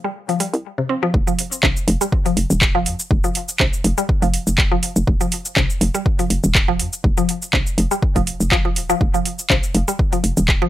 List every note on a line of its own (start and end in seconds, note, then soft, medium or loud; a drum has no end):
0.00 0.30 F1 loud
0.04 0.08 G3 medium
0.29 0.34 F3 medium
0.29 open hi-hat soft
0.40 0.44 G3 medium
0.40 open hi-hat medium
0.54 0.65 C2 loud
0.54 open hi-hat soft
0.78 0.80 C3 medium
0.89 0.94 C4 medium
1.03 1.06 F3 loud
1.14 1.23 F1 loud
1.14 kick loud
1.27 1.33 F3 medium
1.27 cabasa soft
1.39 open hi-hat medium
1.52 cabasa medium
1.63 1.72 A#1 medium
1.63 1.67 C3 loud
1.63 kick loud
1.63 clap medium
1.77 cabasa soft
1.88 1.97 F1 loud
1.88 open hi-hat medium
2.01 2.05 G3 medium
2.01 cabasa medium
2.12 kick loud
2.26 2.31 F3 medium
2.26 open hi-hat soft
2.26 cabasa soft
2.37 2.46 F1 medium
2.37 open hi-hat medium
2.50 2.88 D#1 loud
2.50 cabasa medium
2.61 kick loud
2.61 clap loud
2.75 2.78 F3 loud
2.86 2.95 F2 medium
2.86 open hi-hat medium
2.99 cabasa medium
3.11 3.20 F1 loud
3.11 kick loud
3.24 3.29 F3 medium
3.24 cabasa soft
3.35 open hi-hat loud
3.49 cabasa medium
3.60 3.69 A#1 medium
3.60 3.64 C3 loud
3.60 kick loud
3.60 clap loud
3.73 cabasa soft
3.84 3.94 F1 loud
3.84 open hi-hat loud
3.98 4.01 G3 medium
3.98 cabasa soft
4.09 kick loud
4.22 4.39 F1 medium
4.22 4.28 F3 medium
4.22 open hi-hat soft
4.22 cabasa soft
4.34 open hi-hat medium
4.47 4.77 F1 medium
4.47 cabasa soft
4.58 kick loud
4.58 clap loud
4.72 4.75 F3 loud
4.83 open hi-hat loud
4.96 5.04 F1 medium
4.96 cabasa medium
5.07 5.17 F1 loud
5.07 kick loud
5.21 5.26 F3 medium
5.21 cabasa soft
5.32 open hi-hat loud
5.45 cabasa medium
5.57 5.66 A#1 medium
5.57 5.61 C3 loud
5.57 kick loud
5.57 clap medium
5.70 cabasa soft
5.81 5.90 F1 loud
5.81 open hi-hat loud
5.95 5.98 G3 medium
5.95 cabasa soft
6.06 kick loud
6.19 6.25 F3 medium
6.19 open hi-hat soft
6.19 cabasa soft
6.30 6.39 F1 medium
6.30 open hi-hat medium
6.44 6.81 D#1 loud
6.44 cabasa medium
6.55 kick loud
6.55 clap medium
6.68 6.72 F3 loud
6.79 6.89 F2 medium
6.79 open hi-hat loud
6.93 cabasa soft
7.04 7.13 F1 loud
7.04 kick loud
7.17 7.23 F3 medium
7.17 cabasa soft
7.29 open hi-hat medium
7.42 cabasa soft
7.53 7.62 A#1 loud
7.53 7.58 C3 loud
7.53 kick loud
7.53 clap medium
7.67 cabasa soft
7.78 7.87 F1 loud
7.78 open hi-hat loud
7.91 7.95 G3 medium
7.91 cabasa soft
8.03 kick loud
8.16 8.32 F1 medium
8.16 8.21 F3 medium
8.16 kick medium
8.16 open hi-hat soft
8.16 cabasa soft
8.27 open hi-hat medium
8.40 8.78 F1 medium
8.40 cabasa soft
8.52 8.56 F3 loud
8.52 kick loud
8.52 clap medium
8.65 8.69 F3 medium
8.76 8.94 D#1 loud
8.76 open hi-hat loud
8.90 8.95 F3 loud
8.90 cabasa soft
9.01 9.10 F1 loud
9.01 kick loud
9.14 9.20 F3 medium
9.14 cabasa soft
9.25 open hi-hat medium
9.39 cabasa medium
9.50 9.59 A#1 medium
9.50 9.54 C3 loud
9.50 kick loud
9.50 clap medium
9.63 cabasa soft
9.75 9.84 F1 loud
9.75 open hi-hat medium
9.88 9.92 G3 medium
9.88 cabasa soft
9.99 kick loud
10.13 10.18 F3 medium
10.13 open hi-hat soft
10.13 cabasa soft
10.24 10.33 F1 medium
10.24 open hi-hat medium
10.37 10.69 D#1 loud
10.37 cabasa soft
10.48 kick loud
10.48 clap medium
10.62 10.65 F3 loud